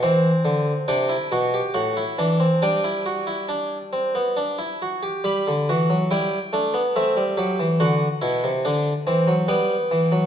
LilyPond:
<<
  \new Staff \with { instrumentName = "Harpsichord" } { \time 3/4 \key g \major \tempo 4 = 70 << { c''4 g''4 fis''4 | g''2~ g''8 r8 | b''4 g''4 e''4 | fis''2 g''4 | } \\ { c'4 d'16 e'16 fis'16 g'16 fis'16 e'16 d'16 c'16 | d'16 e'16 fis'16 e'16 d'8 c'16 b16 d'16 e'16 fis'16 g'16 | g'8 fis'8 e'8 d'8 c'8 g'8 | fis'8 e'8 d'8 c'8 b4 | } >> }
  \new Staff \with { instrumentName = "Harpsichord" } { \clef bass \time 3/4 \key g \major e8 d8 c8 b,8 a,8 e8 | g2~ g8 r8 | g16 d16 e16 fis16 g8 a16 b16 a16 g16 fis16 e16 | d8 b,16 c16 d8 e16 fis16 g8 e16 fis16 | }
>>